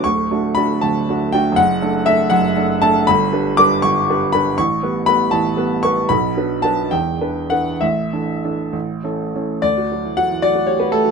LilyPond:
<<
  \new Staff \with { instrumentName = "Upright piano" } { \time 6/8 \key d \major \tempo 4. = 79 cis'''4 b''8 a''4 g''8 | fis''4 e''8 fis''4 a''8 | b''4 d'''8 cis'''4 b''8 | cis'''4 b''8 a''4 cis'''8 |
b''4 a''8 g''4 fis''8 | e''4. r4. | d''4 fis''8 d''8 cis''16 b'16 a'8 | }
  \new Staff \with { instrumentName = "Upright piano" } { \time 6/8 \key d \major <d,, d,>8 <a d' fis'>8 <a d' fis'>8 <d,, d,>8 <a d' fis'>8 <a d' fis'>8 | <fis,, fis,>8 <a d' a'>8 <a d' a'>8 <fis,, fis,>8 <a d' a'>8 <a d' a'>8 | <g,, g,>8 <g d' b'>8 <g d' b'>8 <g,, g,>8 <g d' b'>8 <g d' b'>8 | <a,, a,>8 <g b b'>8 <g b b'>8 <a,, a,>8 <g b b'>8 <g b b'>8 |
<b,, b,>8 <fis d' b'>8 <fis d' b'>8 <e,, e,>8 <e d' b'>8 <e d' b'>8 | <a,, a,>8 <e d' a'>8 <e d' a'>8 <a,, a,>8 <e cis' a'>8 <e cis' a'>8 | d,16 fis'16 fis16 e16 fis16 e16 fis16 fis'16 g'16 fis'16 a16 fis16 | }
>>